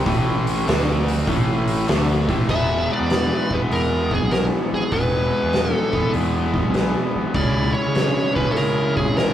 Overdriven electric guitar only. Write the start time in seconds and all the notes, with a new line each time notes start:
0.05 A2 E3 A3
0.67 D3 A3 D4
1.27 A2 E3 A3
1.88 D3 A3 D4
2.29 A2 E3 A3
2.48 E3 G#3 B3 E4
3.50 E3 G#3 B3 E4
4.92 E3 G#3 B3 E4
5.92 E3 G#3 B3 E4
7.35 C#3 G#3 C#4 E4
8.35 C#3 G#3 C#4 E4